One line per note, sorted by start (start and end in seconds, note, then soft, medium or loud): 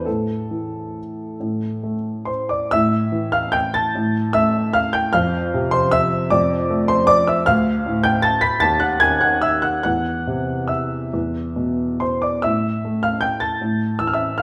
0.05 1.37 A2 soft
0.05 2.28 A4 medium
0.51 1.93 E3 soft
1.40 2.68 A2 soft
1.83 2.72 A3 soft
2.25 2.49 C5 soft
2.25 2.49 C6 medium
2.49 2.70 D5 soft
2.49 2.71 D6 medium
2.71 3.92 A2 medium
2.71 3.30 E5 medium
2.71 3.33 E6 loud
3.12 4.42 E3 medium
3.32 3.53 F5 medium
3.32 3.54 F6 loud
3.52 3.73 G5 medium
3.52 3.74 G6 loud
3.74 4.30 A5 medium
3.74 4.34 A6 medium
3.95 5.10 A2 medium
4.33 5.14 A3 medium
4.33 4.72 E5 medium
4.33 4.74 E6 loud
4.73 4.93 F5 medium
4.73 4.94 F6 loud
4.93 5.12 G5 medium
4.93 5.13 G6 loud
5.13 6.28 F2 medium
5.13 5.69 F5 medium
5.13 5.72 F6 loud
5.54 6.77 C3 medium
5.71 5.91 C5 medium
5.71 5.92 C6 loud
5.91 6.28 E5 medium
5.91 6.30 E6 loud
6.30 7.44 F2 medium
6.30 6.85 D5 medium
6.30 6.88 D6 loud
6.70 7.47 A3 medium
6.88 7.07 C5 medium
6.88 7.08 C6 loud
7.07 7.26 D5 medium
7.07 7.27 D6 loud
7.27 7.46 E5 medium
7.27 7.47 E6 medium
7.46 8.59 D2 medium
7.46 8.01 F5 medium
7.46 8.04 F6 loud
7.86 8.63 A2 medium
8.04 8.23 G5 medium
8.04 8.23 G6 loud
8.22 8.42 A5 medium
8.22 8.43 A6 loud
8.41 8.61 B5 medium
8.41 8.61 B6 loud
8.60 9.80 D#2 medium
8.60 8.80 A5 medium
8.60 8.80 A6 loud
8.80 9.00 F#5 medium
8.80 9.00 F#6 medium
9.00 9.84 D#3 medium
9.00 9.21 G#5 medium
9.00 9.21 G#6 loud
9.21 9.41 F#5 medium
9.21 9.42 F#6 medium
9.42 9.62 E5 medium
9.42 9.63 E6 medium
9.62 9.82 F#5 medium
9.62 9.82 F#6 medium
9.83 11.09 E2 medium
9.83 10.65 F#5 medium
9.83 10.69 F#6 medium
10.27 11.13 C3 soft
10.68 11.97 E5 medium
10.68 12.00 E6 medium
11.13 12.40 E2 medium
11.56 12.44 B2 soft
12.00 12.22 C5 medium
12.00 12.22 C6 medium
12.22 12.42 D5 medium
12.22 12.43 D6 medium
12.42 13.58 A2 medium
12.42 12.99 E5 medium
12.42 13.03 E6 medium
12.85 14.09 A3 soft
13.03 13.22 F5 medium
13.03 13.22 F6 medium
13.21 13.40 G5 medium
13.21 13.41 G6 medium
13.40 13.96 A5 medium
13.40 13.99 A6 medium
13.62 14.42 A2 medium
13.99 14.42 E3 soft
13.99 14.06 E6 medium
14.07 14.14 F6 medium
14.13 14.38 E5 medium
14.13 14.40 E6 medium
14.38 14.42 F6 medium